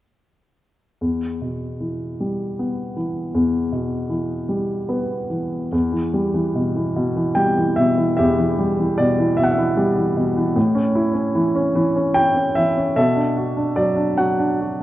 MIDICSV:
0, 0, Header, 1, 2, 480
1, 0, Start_track
1, 0, Tempo, 802139
1, 606, Time_signature, 6, 3, 24, 8
1, 1083, Tempo, 773196
1, 3003, Tempo, 825309
1, 4443, Tempo, 795756
1, 6843, Tempo, 813008
1, 8892, End_track
2, 0, Start_track
2, 0, Title_t, "Grand piano"
2, 0, Program_c, 0, 0
2, 605, Note_on_c, 0, 40, 28
2, 713, Control_c, 0, 64, 127
2, 847, Note_on_c, 0, 47, 22
2, 1079, Note_on_c, 0, 52, 26
2, 1328, Note_on_c, 0, 55, 29
2, 1569, Note_on_c, 0, 59, 31
2, 1777, Note_off_c, 0, 47, 0
2, 1791, Note_off_c, 0, 52, 0
2, 1800, Note_on_c, 0, 52, 30
2, 2012, Note_off_c, 0, 40, 0
2, 2036, Note_on_c, 0, 40, 39
2, 2249, Note_off_c, 0, 55, 0
2, 2271, Note_on_c, 0, 47, 34
2, 2490, Note_off_c, 0, 59, 0
2, 2492, Note_off_c, 0, 52, 0
2, 2501, Note_on_c, 0, 52, 35
2, 2746, Note_on_c, 0, 55, 31
2, 2994, Note_on_c, 0, 59, 30
2, 2994, Note_on_c, 0, 71, 36
2, 3216, Note_off_c, 0, 47, 0
2, 3224, Note_off_c, 0, 52, 0
2, 3233, Note_on_c, 0, 52, 25
2, 3456, Note_off_c, 0, 71, 0
2, 3457, Note_off_c, 0, 55, 0
2, 3459, Note_off_c, 0, 40, 0
2, 3464, Note_off_c, 0, 59, 0
2, 3472, Note_off_c, 0, 52, 0
2, 3480, Note_on_c, 0, 40, 45
2, 3491, Control_c, 0, 64, 0
2, 3595, Note_on_c, 0, 52, 36
2, 3609, Control_c, 0, 64, 127
2, 3721, Note_on_c, 0, 55, 40
2, 3831, Note_off_c, 0, 52, 0
2, 3840, Note_on_c, 0, 52, 34
2, 3963, Note_on_c, 0, 47, 36
2, 4074, Note_off_c, 0, 52, 0
2, 4083, Note_on_c, 0, 52, 37
2, 4192, Note_off_c, 0, 47, 0
2, 4201, Note_on_c, 0, 47, 45
2, 4309, Note_off_c, 0, 52, 0
2, 4318, Note_on_c, 0, 52, 39
2, 4425, Note_off_c, 0, 55, 0
2, 4426, Note_on_c, 0, 79, 62
2, 4434, Note_on_c, 0, 55, 44
2, 4551, Note_off_c, 0, 52, 0
2, 4560, Note_on_c, 0, 52, 38
2, 4673, Note_on_c, 0, 76, 64
2, 4675, Note_off_c, 0, 47, 0
2, 4684, Note_on_c, 0, 47, 42
2, 4685, Note_off_c, 0, 79, 0
2, 4795, Note_off_c, 0, 52, 0
2, 4804, Note_on_c, 0, 52, 39
2, 4902, Note_off_c, 0, 40, 0
2, 4909, Note_off_c, 0, 76, 0
2, 4918, Note_on_c, 0, 76, 62
2, 4929, Note_on_c, 0, 67, 48
2, 4932, Note_on_c, 0, 40, 49
2, 5041, Note_off_c, 0, 52, 0
2, 5050, Note_on_c, 0, 52, 38
2, 5164, Note_off_c, 0, 55, 0
2, 5173, Note_on_c, 0, 55, 44
2, 5284, Note_off_c, 0, 52, 0
2, 5293, Note_on_c, 0, 52, 37
2, 5407, Note_on_c, 0, 74, 61
2, 5410, Note_off_c, 0, 47, 0
2, 5419, Note_on_c, 0, 47, 43
2, 5422, Note_off_c, 0, 76, 0
2, 5524, Note_off_c, 0, 52, 0
2, 5533, Note_on_c, 0, 52, 43
2, 5629, Note_off_c, 0, 67, 0
2, 5641, Note_off_c, 0, 47, 0
2, 5642, Note_on_c, 0, 76, 65
2, 5650, Note_on_c, 0, 47, 48
2, 5658, Note_off_c, 0, 74, 0
2, 5683, Note_on_c, 0, 78, 54
2, 5686, Note_off_c, 0, 76, 0
2, 5730, Note_off_c, 0, 78, 0
2, 5732, Note_on_c, 0, 76, 59
2, 5762, Note_off_c, 0, 52, 0
2, 5772, Note_on_c, 0, 52, 44
2, 5877, Note_off_c, 0, 55, 0
2, 5886, Note_on_c, 0, 55, 49
2, 5993, Note_off_c, 0, 52, 0
2, 6002, Note_on_c, 0, 52, 42
2, 6116, Note_off_c, 0, 47, 0
2, 6125, Note_on_c, 0, 47, 45
2, 6163, Note_off_c, 0, 76, 0
2, 6237, Note_off_c, 0, 52, 0
2, 6246, Note_on_c, 0, 52, 45
2, 6343, Note_off_c, 0, 40, 0
2, 6348, Note_off_c, 0, 55, 0
2, 6356, Note_off_c, 0, 47, 0
2, 6361, Note_off_c, 0, 52, 0
2, 6361, Note_on_c, 0, 45, 55
2, 6373, Control_c, 0, 64, 0
2, 6476, Note_on_c, 0, 61, 45
2, 6483, Control_c, 0, 64, 127
2, 6599, Note_on_c, 0, 64, 47
2, 6703, Note_off_c, 0, 61, 0
2, 6712, Note_on_c, 0, 61, 42
2, 6839, Note_on_c, 0, 52, 47
2, 6950, Note_off_c, 0, 61, 0
2, 6959, Note_on_c, 0, 61, 47
2, 7068, Note_off_c, 0, 52, 0
2, 7077, Note_on_c, 0, 52, 54
2, 7189, Note_off_c, 0, 61, 0
2, 7198, Note_on_c, 0, 61, 44
2, 7308, Note_on_c, 0, 79, 78
2, 7310, Note_off_c, 0, 64, 0
2, 7319, Note_on_c, 0, 64, 43
2, 7427, Note_off_c, 0, 61, 0
2, 7436, Note_on_c, 0, 61, 41
2, 7549, Note_off_c, 0, 52, 0
2, 7549, Note_on_c, 0, 76, 72
2, 7558, Note_off_c, 0, 79, 0
2, 7558, Note_on_c, 0, 52, 42
2, 7669, Note_off_c, 0, 61, 0
2, 7678, Note_on_c, 0, 61, 41
2, 7767, Note_off_c, 0, 45, 0
2, 7777, Note_off_c, 0, 64, 0
2, 7782, Note_off_c, 0, 76, 0
2, 7785, Note_off_c, 0, 52, 0
2, 7790, Note_off_c, 0, 61, 0
2, 7791, Note_on_c, 0, 76, 70
2, 7792, Note_on_c, 0, 69, 49
2, 7794, Note_on_c, 0, 47, 51
2, 7801, Control_c, 0, 64, 0
2, 7907, Note_on_c, 0, 62, 39
2, 7922, Control_c, 0, 64, 127
2, 8031, Note_on_c, 0, 66, 40
2, 8140, Note_off_c, 0, 62, 0
2, 8148, Note_on_c, 0, 62, 34
2, 8262, Note_on_c, 0, 74, 57
2, 8268, Note_on_c, 0, 54, 38
2, 8281, Note_off_c, 0, 76, 0
2, 8374, Note_off_c, 0, 62, 0
2, 8383, Note_on_c, 0, 62, 39
2, 8488, Note_off_c, 0, 69, 0
2, 8502, Note_off_c, 0, 54, 0
2, 8507, Note_on_c, 0, 78, 58
2, 8511, Note_on_c, 0, 54, 46
2, 8516, Note_off_c, 0, 74, 0
2, 8626, Note_off_c, 0, 62, 0
2, 8635, Note_on_c, 0, 62, 38
2, 8751, Note_off_c, 0, 66, 0
2, 8759, Note_on_c, 0, 66, 38
2, 8870, Note_off_c, 0, 62, 0
2, 8892, Note_off_c, 0, 47, 0
2, 8892, Note_off_c, 0, 54, 0
2, 8892, Note_off_c, 0, 66, 0
2, 8892, Note_off_c, 0, 78, 0
2, 8892, End_track
0, 0, End_of_file